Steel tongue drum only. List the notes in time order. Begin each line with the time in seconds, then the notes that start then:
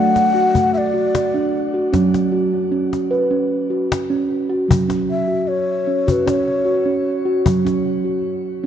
Already playing: F#3 A3
0.34 F#4
0.54 A3
0.94 F#4
1.34 D4
1.74 F#4
1.93 F#3 C#4
2.32 F#4
2.72 C#4
3.11 B4
3.31 C#4
3.70 F#4
4.10 C#4
4.50 F#4
4.68 F#3
4.88 C#4
5.28 F#4
5.87 C#4
6.07 F#4
6.27 C#4
6.65 F#4
6.86 C#4
7.25 F#4
7.45 F#3
7.65 C#4
8.05 F#4
8.64 C#4